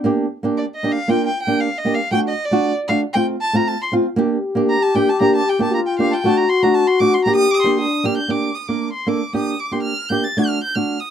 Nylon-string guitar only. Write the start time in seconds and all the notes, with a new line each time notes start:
0.04 A#3 D4 G4
0.43 A#3 D4 G4
0.83 A#3 D4 G4
1.08 A#3 D4 F4
1.47 A#3 D4 G4
1.85 A#3 D4 G4
2.11 A3 D4 F#4
2.51 A3 D4 F#4
2.89 A3 D4 F#4
3.15 A3 C4 F4
3.53 A3 C4 F4
3.92 A3 C4 F4
4.16 A#3 D4 G4
4.55 A#3 D4 G4
4.95 A#3 D4 G4
5.20 A#3 D4 G4
5.59 A#3 D4 G4
5.99 A#3 D4 G4
6.24 A3 D4 F#4
6.63 A3 D4 F#4
7.00 A3 D4 F#4
7.26 A#3 D4 G4
7.64 A#3 D4 G4
8.04 A#3 D4 G4
8.28 A#3 D4 G4
8.69 A#3 D4 A#4
9.07 A#3 D4 A4
9.33 A#3 D4 G4
9.71 A#3 D4 G4
10.10 A#3 D4 G4
10.37 A3 D4 F#4
10.75 A3 D4 F#4